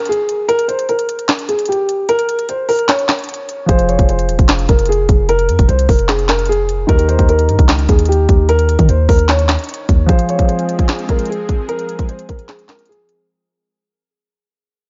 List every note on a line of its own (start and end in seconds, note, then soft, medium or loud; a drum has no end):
0.05 0.47 G#4 loud
0.05 closed hi-hat medium
0.12 closed hi-hat medium
0.29 closed hi-hat medium
0.48 0.66 A#4 loud
0.48 closed hi-hat medium
0.59 closed hi-hat medium
0.68 0.85 C5 medium
0.68 closed hi-hat medium
0.79 closed hi-hat medium
0.89 1.45 A#4 medium
0.89 closed hi-hat medium
0.99 closed hi-hat medium
1.09 closed hi-hat medium
1.19 closed hi-hat medium
1.29 snare loud
1.29 clap medium
1.29 closed hi-hat medium
1.39 closed hi-hat medium
1.49 1.66 G#4 medium
1.49 closed hi-hat medium
1.59 closed hi-hat medium
1.66 2.06 G4 medium
1.66 closed hi-hat medium
1.72 closed hi-hat medium
1.89 closed hi-hat medium
2.09 2.46 A#4 loud
2.09 closed hi-hat medium
2.19 closed hi-hat medium
2.29 closed hi-hat medium
2.39 closed hi-hat medium
2.49 2.66 C5 medium
2.49 closed hi-hat medium
2.69 2.86 A#4 medium
2.69 open hi-hat medium
2.79 closed hi-hat medium
2.89 3.65 C#5 medium
2.89 snare loud
2.89 clap medium
2.89 closed hi-hat medium
2.99 closed hi-hat medium
3.09 snare loud
3.09 clap medium
3.09 closed hi-hat medium
3.19 closed hi-hat soft
3.24 closed hi-hat medium
3.29 closed hi-hat medium
3.34 closed hi-hat medium
3.49 closed hi-hat medium
3.66 3.98 F1 loud
3.66 6.83 F3 medium
3.66 6.84 F4 medium
3.66 6.85 G#4 medium
3.66 3.86 C5 medium
3.66 kick loud
3.66 closed hi-hat medium
3.71 6.86 C5 medium
3.79 closed hi-hat medium
3.88 4.06 C#5 medium
3.88 closed hi-hat medium
3.99 4.30 F1 loud
3.99 kick medium
3.99 closed hi-hat medium
4.09 4.65 C5 medium
4.09 closed hi-hat medium
4.19 closed hi-hat medium
4.29 4.38 D#1 loud
4.29 closed hi-hat medium
4.39 4.68 F1 loud
4.39 kick loud
4.39 closed hi-hat medium
4.49 snare loud
4.49 clap medium
4.49 closed hi-hat medium
4.59 closed hi-hat medium
4.69 5.07 F1 loud
4.69 4.86 A#4 medium
4.69 kick loud
4.69 closed hi-hat medium
4.79 closed hi-hat medium
4.86 5.26 G#4 medium
4.86 closed hi-hat medium
4.92 closed hi-hat medium
5.09 5.50 F1 loud
5.09 kick loud
5.09 closed hi-hat medium
5.29 5.66 A#4 loud
5.29 closed hi-hat medium
5.39 closed hi-hat medium
5.49 5.58 F2 loud
5.49 closed hi-hat medium
5.59 5.68 F1 loud
5.59 kick medium
5.59 closed hi-hat medium
5.68 5.88 C2 loud
5.68 5.85 C5 medium
5.68 closed hi-hat medium
5.79 closed hi-hat medium
5.89 6.85 F1 loud
5.89 6.06 A#4 medium
5.89 kick medium
5.89 open hi-hat medium
5.99 closed hi-hat medium
6.09 6.26 G#4 medium
6.09 snare loud
6.09 clap medium
6.09 closed hi-hat medium
6.19 closed hi-hat medium
6.29 6.46 A#4 medium
6.29 snare loud
6.29 clap medium
6.29 closed hi-hat medium
6.39 closed hi-hat medium
6.46 6.87 G#4 loud
6.46 closed hi-hat medium
6.52 closed hi-hat medium
6.69 closed hi-hat medium
6.87 7.18 D#2 loud
6.87 10.04 D#3 medium
6.87 10.05 D#4 medium
6.87 10.05 G4 medium
6.87 7.06 A#4 loud
6.87 kick loud
6.87 closed hi-hat medium
6.91 10.06 A#4 medium
6.99 closed hi-hat medium
7.08 7.25 C5 medium
7.08 closed hi-hat medium
7.19 7.50 D#2 loud
7.19 kick medium
7.19 closed hi-hat medium
7.29 7.85 A#4 medium
7.29 closed hi-hat medium
7.39 closed hi-hat medium
7.49 7.58 G2 loud
7.49 closed hi-hat medium
7.59 7.88 C#2 loud
7.59 kick loud
7.59 closed hi-hat medium
7.69 snare loud
7.69 clap medium
7.69 closed hi-hat medium
7.79 closed hi-hat medium
7.89 8.27 D#2 loud
7.89 8.06 G#4 medium
7.89 kick loud
7.89 closed hi-hat medium
7.99 closed hi-hat medium
8.05 8.46 G4 medium
8.05 closed hi-hat medium
8.12 closed hi-hat medium
8.29 8.77 D#2 loud
8.29 kick loud
8.29 closed hi-hat medium
8.49 8.86 A#4 loud
8.49 closed hi-hat medium
8.59 closed hi-hat medium
8.69 closed hi-hat medium
8.79 8.88 D#3 loud
8.79 kick medium
8.79 closed hi-hat medium
8.89 9.08 D#2 loud
8.89 9.06 C5 medium
8.89 closed hi-hat medium
9.09 9.57 D#2 loud
9.09 9.26 A#4 medium
9.09 kick medium
9.09 open hi-hat medium
9.19 closed hi-hat medium
9.29 10.05 C#5 medium
9.29 snare loud
9.29 clap medium
9.29 closed hi-hat medium
9.39 closed hi-hat medium
9.49 snare loud
9.49 clap medium
9.49 closed hi-hat medium
9.59 closed hi-hat soft
9.64 closed hi-hat medium
9.69 closed hi-hat medium
9.74 closed hi-hat medium
9.89 10.08 D#2 loud
9.89 kick loud
9.89 closed hi-hat medium
10.06 13.23 F3 medium
10.06 13.26 F3 medium
10.06 13.26 G#3 medium
10.06 13.26 C4 medium
10.06 13.24 F4 medium
10.06 13.26 G#4 medium
10.06 13.25 G#4 medium
10.06 10.26 C5 medium
10.06 kick loud
10.06 closed hi-hat medium
10.11 13.26 C5 medium
10.19 closed hi-hat medium
10.29 10.46 C#5 medium
10.29 closed hi-hat medium
10.39 kick medium
10.39 closed hi-hat medium
10.48 11.05 C5 medium
10.48 closed hi-hat medium
10.59 closed hi-hat medium
10.69 closed hi-hat medium
10.79 kick loud
10.79 closed hi-hat medium
10.89 snare loud
10.89 clap medium
10.89 closed hi-hat medium
10.99 closed hi-hat medium
11.09 11.26 A#4 medium
11.09 kick medium
11.09 closed hi-hat medium
11.19 closed hi-hat medium
11.26 11.67 G#4 medium
11.26 closed hi-hat medium
11.32 closed hi-hat medium
11.49 kick loud
11.49 closed hi-hat medium
11.69 12.06 A#4 loud
11.69 closed hi-hat medium
11.79 closed hi-hat medium
11.89 closed hi-hat medium
11.99 kick medium
11.99 closed hi-hat medium
12.09 12.26 C5 medium
12.09 closed hi-hat medium
12.19 closed hi-hat medium
12.29 12.46 A#4 medium
12.29 kick medium
12.29 closed hi-hat medium
12.39 closed hi-hat soft
12.48 12.65 G#4 medium
12.48 snare loud
12.48 clap medium
12.48 closed hi-hat medium
12.59 closed hi-hat medium
12.69 12.86 A#4 medium
12.69 snare loud
12.69 clap medium
12.69 closed hi-hat medium
12.79 closed hi-hat medium
12.86 13.27 G#4 medium
12.86 closed hi-hat medium
12.92 closed hi-hat medium
13.09 closed hi-hat medium